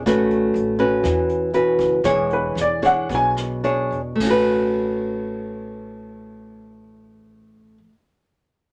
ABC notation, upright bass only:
X:1
M:4/4
L:1/8
Q:1/4=105
K:A
V:1 name="Upright bass" clef=bass
A,,,2 A,,,2 E,,3 F,,, | E,,,2 E,,,2 B,,,3 E,,, | A,,,8- | A,,,8 |]